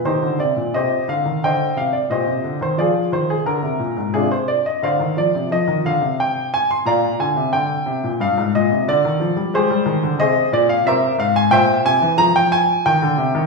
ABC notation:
X:1
M:4/4
L:1/16
Q:1/4=89
K:Cm
V:1 name="Grand piano"
[EGc]2 d2 [Gce]2 f2 [ceg]2 f d [Gce]3 c | [FAd]2 c A B4 [DFA] c d e [cdf]2 d2 | e2 f2 g2 a c' [dfb]2 a2 g4 | f2 e2 d4 [GAc]4 [Ace]2 d f |
[Bc=e]2 f a [ceg]2 a2 b g a2 g4 |]
V:2 name="Grand piano" clef=bass
E, D, C, B,, C,2 D, E, D,2 C,2 B,, C, D, E, | F,2 E,2 D, C, B,, A,, C,4 D, E, F, C, | F, E, D, C,4- C, B,,2 D, C, D,2 C, B,, | G,, A,, B,, C, D, E, F, G, A, G, E, D, C,2 B,,2 |
C,2 A,,2 B,,2 C, =E, F,4 _E, D, C, E, |]